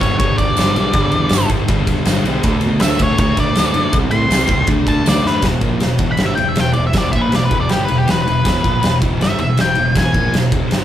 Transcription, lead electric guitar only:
0.01 0.17 C#5 loud
0.19 0.38 C#5 loud
0.38 1.47 D5 loud
2.81 2.99 E5 loud
3.03 3.18 C#5 loud
3.20 3.37 C#5 loud
3.40 3.93 D5 loud
4.11 4.66 C6 loud
4.88 5.06 A5 loud
5.09 5.27 D5 loud
5.27 5.44 B4 loud
6.12 6.21 B5 loud
6.26 6.35 E5 loud
6.35 6.49 G5 medium
6.49 6.60 E5 medium
6.60 6.71 G5 medium
6.73 6.84 D5 medium
6.87 6.97 E5 medium
6.98 7.12 D5 medium
7.12 7.22 E5 loud
7.22 7.33 B4 medium
7.35 7.45 D5 medium
7.45 7.57 B4 medium
7.61 7.71 D5 medium
7.70 7.82 G4 medium
7.84 7.96 B4 medium
7.98 8.09 G4 medium
8.10 8.21 B4 medium
8.22 8.95 B4 medium
9.22 9.39 E5 loud
9.40 9.58 E5 loud
9.61 9.97 G5 medium
9.98 10.34 G#5 loud

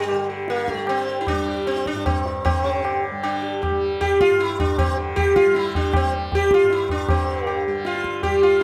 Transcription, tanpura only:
0.00 1.92 G2 medium
0.00 0.12 D3 medium
0.00 0.73 G3 medium
0.12 2.50 D3 medium
0.73 1.32 G3 medium
1.32 3.11 G3 medium
1.92 4.30 G2 medium
2.51 4.88 D3 medium
3.11 3.70 G3 medium
3.70 5.45 G3 medium
4.30 6.62 G2 medium
4.88 7.09 D3 medium
5.45 6.04 G3 medium
6.04 7.67 G3 medium
6.62 8.63 G2 medium
7.09 8.63 D3 medium
7.67 8.25 G3 medium
8.25 8.63 G3 medium

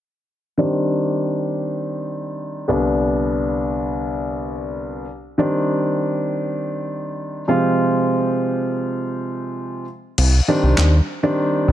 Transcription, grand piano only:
0.58 2.64 D#3 medium
0.58 2.64 G3 medium
0.58 2.64 C4 medium
0.58 2.64 D4 medium
2.68 5.04 C2 medium
2.68 5.04 D3 medium
2.68 5.04 G3 medium
2.68 5.04 B3 medium
2.68 5.04 D4 medium
5.38 7.44 D#3 medium
5.38 7.44 G3 medium
5.38 7.44 C4 medium
5.38 7.45 D4 medium
7.48 9.84 C3 medium
7.48 9.84 F3 medium
7.48 9.84 G#3 medium
7.48 9.84 C4 medium
7.48 9.84 F4 medium
10.48 10.93 D#3 medium
10.48 10.93 G3 medium
10.48 10.93 C4 medium
10.48 10.93 D4 medium
11.23 11.68 D#3 medium
11.23 11.68 G3 medium
11.23 11.68 C4 medium
11.23 11.68 D4 medium

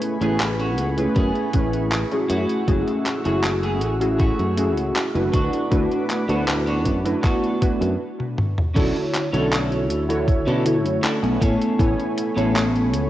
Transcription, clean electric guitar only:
0.21 0.40 B3 medium
0.21 0.40 C#4 medium
0.21 0.41 G#4 medium
0.58 0.87 B3 medium
0.58 0.88 C#4 medium
0.58 0.88 F#4 medium
1.15 1.82 B3 medium
1.15 1.83 C#4 medium
1.15 1.83 G#4 medium
2.28 3.05 A3 medium
2.28 3.06 E4 medium
2.28 3.06 F#4 loud
3.24 3.43 A3 medium
3.24 3.44 E4 medium
3.24 3.44 F#4 loud
3.63 3.91 A3 medium
3.63 3.92 E4 medium
3.63 3.92 G#4 medium
4.18 4.86 A3 medium
4.18 4.86 E4 medium
4.18 4.87 F#4 medium
5.32 6.09 B3 medium
5.32 6.09 D4 medium
5.32 6.10 F#4 loud
6.28 6.47 B3 medium
6.28 6.48 D4 medium
6.28 6.48 F#4 loud
6.66 6.95 B3 medium
6.66 6.95 D4 medium
6.66 6.96 F#4 medium
7.22 7.90 B3 medium
7.22 7.90 D4 medium
7.22 7.91 F#4 medium
8.74 8.95 C#4 loud
8.74 8.95 D4 loud
8.74 8.95 E4 loud
8.74 8.96 A4 loud
9.13 muted clean electric guitar stroke soft
9.32 9.89 C#4 medium
9.32 9.89 D4 medium
9.32 9.90 E4 medium
9.32 9.90 A4 medium
10.46 10.65 C#4 loud
10.46 10.65 D4 loud
10.46 10.66 E4 loud
10.46 10.66 A4 loud
10.85 muted clean electric guitar stroke soft
11.03 11.40 C#4 medium
11.03 11.41 D4 medium
11.03 11.42 E4 medium
11.03 11.41 A4 loud
11.40 12.02 B3 medium
11.40 12.03 C#4 medium
11.40 12.03 G#4 medium
11.40 12.03 A4 loud
12.17 muted clean electric guitar stroke soft
12.36 12.93 B3 medium
12.36 12.93 C#4 medium
12.36 12.93 G#4 medium
12.36 12.94 A4 loud

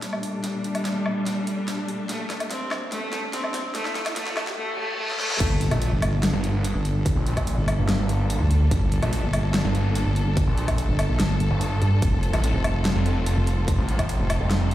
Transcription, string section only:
0.00 4.54 A#2 medium
0.00 4.53 G3 medium
0.00 4.54 A3 medium
0.00 4.54 D4 medium
5.40 11.98 G3 medium
5.40 11.98 A#3 medium
5.40 11.98 D4 medium
5.40 14.74 A4 medium
12.02 14.74 G3 medium
12.02 14.74 C4 medium
12.02 14.74 F4 medium

